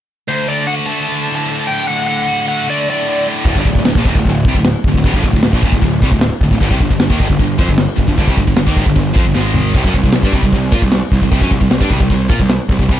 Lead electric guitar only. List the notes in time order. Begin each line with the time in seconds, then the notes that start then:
0.28 C5
0.48 D5
0.67 F#5
0.86 A5
1.35 A5
1.67 G5
1.88 F#5
2.07 F#5
2.48 F#5
2.70 D5
2.90 D5